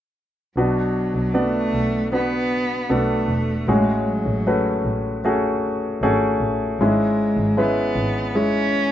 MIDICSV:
0, 0, Header, 1, 4, 480
1, 0, Start_track
1, 0, Tempo, 779221
1, 347, Time_signature, 4, 2, 24, 8
1, 5493, End_track
2, 0, Start_track
2, 0, Title_t, "Grand piano"
2, 0, Program_c, 0, 0
2, 352, Note_on_c, 0, 62, 51
2, 353, Note_on_c, 0, 47, 53
2, 353, Note_on_c, 0, 59, 51
2, 354, Note_on_c, 0, 66, 54
2, 356, Note_on_c, 0, 71, 58
2, 470, Control_c, 0, 64, 127
2, 806, Note_off_c, 0, 59, 0
2, 806, Note_off_c, 0, 62, 0
2, 807, Note_off_c, 0, 66, 0
2, 808, Note_off_c, 0, 71, 0
2, 825, Note_on_c, 0, 59, 55
2, 825, Note_on_c, 0, 66, 43
2, 826, Note_on_c, 0, 62, 48
2, 830, Note_on_c, 0, 74, 57
2, 1045, Note_off_c, 0, 47, 0
2, 1282, Note_off_c, 0, 59, 0
2, 1282, Note_off_c, 0, 66, 0
2, 1283, Note_off_c, 0, 62, 0
2, 1285, Note_off_c, 0, 74, 0
2, 1306, Note_on_c, 0, 59, 52
2, 1310, Note_on_c, 0, 62, 39
2, 1310, Note_on_c, 0, 66, 40
2, 1313, Note_on_c, 0, 71, 57
2, 1763, Note_off_c, 0, 59, 0
2, 1764, Note_off_c, 0, 66, 0
2, 1765, Note_off_c, 0, 62, 0
2, 1766, Note_off_c, 0, 71, 0
2, 1784, Note_on_c, 0, 59, 57
2, 1784, Note_on_c, 0, 66, 48
2, 1785, Note_on_c, 0, 62, 50
2, 1786, Note_on_c, 0, 69, 57
2, 2241, Note_off_c, 0, 59, 0
2, 2242, Note_off_c, 0, 62, 0
2, 2242, Note_off_c, 0, 66, 0
2, 2243, Note_off_c, 0, 69, 0
2, 2268, Note_on_c, 0, 56, 60
2, 2270, Note_on_c, 0, 61, 52
2, 2270, Note_on_c, 0, 66, 55
2, 2271, Note_on_c, 0, 68, 62
2, 2272, Note_on_c, 0, 45, 51
2, 2274, Control_c, 0, 64, 0
2, 2378, Control_c, 0, 64, 127
2, 2724, Note_off_c, 0, 56, 0
2, 2725, Note_off_c, 0, 61, 0
2, 2725, Note_off_c, 0, 66, 0
2, 2725, Note_off_c, 0, 68, 0
2, 2753, Note_on_c, 0, 57, 57
2, 2753, Note_on_c, 0, 61, 47
2, 2754, Note_on_c, 0, 66, 52
2, 2754, Note_on_c, 0, 71, 60
2, 2965, Note_off_c, 0, 45, 0
2, 3206, Note_off_c, 0, 57, 0
2, 3206, Note_off_c, 0, 61, 0
2, 3207, Note_off_c, 0, 66, 0
2, 3207, Note_off_c, 0, 71, 0
2, 3232, Note_on_c, 0, 57, 56
2, 3232, Note_on_c, 0, 61, 55
2, 3236, Note_on_c, 0, 66, 56
2, 3237, Note_on_c, 0, 68, 62
2, 3685, Note_off_c, 0, 57, 0
2, 3686, Note_off_c, 0, 61, 0
2, 3688, Note_off_c, 0, 66, 0
2, 3688, Note_off_c, 0, 68, 0
2, 3712, Note_on_c, 0, 61, 62
2, 3714, Note_on_c, 0, 57, 67
2, 3715, Note_on_c, 0, 68, 69
2, 3716, Note_on_c, 0, 66, 57
2, 4166, Note_off_c, 0, 61, 0
2, 4167, Note_off_c, 0, 57, 0
2, 4167, Note_off_c, 0, 68, 0
2, 4168, Note_off_c, 0, 66, 0
2, 4192, Note_on_c, 0, 44, 51
2, 4192, Note_on_c, 0, 61, 51
2, 4194, Control_c, 0, 64, 0
2, 4194, Note_on_c, 0, 56, 64
2, 4197, Note_on_c, 0, 64, 54
2, 4198, Note_on_c, 0, 68, 59
2, 4306, Control_c, 0, 64, 127
2, 4646, Note_off_c, 0, 56, 0
2, 4646, Note_off_c, 0, 61, 0
2, 4648, Note_off_c, 0, 64, 0
2, 4649, Note_off_c, 0, 68, 0
2, 4665, Note_on_c, 0, 56, 52
2, 4665, Note_on_c, 0, 61, 47
2, 4667, Note_on_c, 0, 64, 53
2, 4669, Note_on_c, 0, 71, 60
2, 4885, Note_off_c, 0, 44, 0
2, 5122, Note_off_c, 0, 56, 0
2, 5122, Note_off_c, 0, 61, 0
2, 5123, Note_off_c, 0, 64, 0
2, 5124, Note_off_c, 0, 71, 0
2, 5144, Note_on_c, 0, 56, 51
2, 5144, Note_on_c, 0, 61, 48
2, 5144, Note_on_c, 0, 64, 45
2, 5146, Note_on_c, 0, 68, 54
2, 5493, Note_off_c, 0, 56, 0
2, 5493, Note_off_c, 0, 61, 0
2, 5493, Note_off_c, 0, 64, 0
2, 5493, Note_off_c, 0, 68, 0
2, 5493, End_track
3, 0, Start_track
3, 0, Title_t, "Cello"
3, 0, Program_c, 1, 42
3, 350, Note_on_c, 1, 54, 68
3, 832, Note_on_c, 1, 57, 85
3, 842, Note_off_c, 1, 54, 0
3, 1310, Note_off_c, 1, 57, 0
3, 1315, Note_on_c, 1, 59, 88
3, 1796, Note_on_c, 1, 57, 76
3, 1805, Note_off_c, 1, 59, 0
3, 2272, Note_on_c, 1, 56, 66
3, 2281, Note_off_c, 1, 57, 0
3, 2517, Note_on_c, 1, 54, 68
3, 2526, Note_off_c, 1, 56, 0
3, 2992, Note_off_c, 1, 54, 0
3, 4189, Note_on_c, 1, 56, 70
3, 4676, Note_on_c, 1, 59, 81
3, 4685, Note_off_c, 1, 56, 0
3, 5150, Note_on_c, 1, 61, 95
3, 5159, Note_off_c, 1, 59, 0
3, 5493, Note_off_c, 1, 61, 0
3, 5493, End_track
4, 0, Start_track
4, 0, Title_t, "Double bass"
4, 0, Program_c, 2, 43
4, 344, Note_on_c, 2, 35, 67
4, 681, Note_off_c, 2, 35, 0
4, 704, Note_on_c, 2, 35, 71
4, 1041, Note_off_c, 2, 35, 0
4, 1067, Note_on_c, 2, 35, 69
4, 1762, Note_off_c, 2, 35, 0
4, 1789, Note_on_c, 2, 35, 76
4, 2011, Note_off_c, 2, 35, 0
4, 2024, Note_on_c, 2, 28, 72
4, 2249, Note_off_c, 2, 28, 0
4, 2264, Note_on_c, 2, 33, 74
4, 2601, Note_off_c, 2, 33, 0
4, 2625, Note_on_c, 2, 33, 77
4, 2962, Note_off_c, 2, 33, 0
4, 2985, Note_on_c, 2, 33, 69
4, 3682, Note_off_c, 2, 33, 0
4, 3705, Note_on_c, 2, 32, 73
4, 3929, Note_off_c, 2, 32, 0
4, 3945, Note_on_c, 2, 33, 61
4, 4169, Note_off_c, 2, 33, 0
4, 4185, Note_on_c, 2, 32, 70
4, 4522, Note_off_c, 2, 32, 0
4, 4540, Note_on_c, 2, 32, 75
4, 4879, Note_off_c, 2, 32, 0
4, 4903, Note_on_c, 2, 32, 82
4, 5493, Note_off_c, 2, 32, 0
4, 5493, End_track
0, 0, End_of_file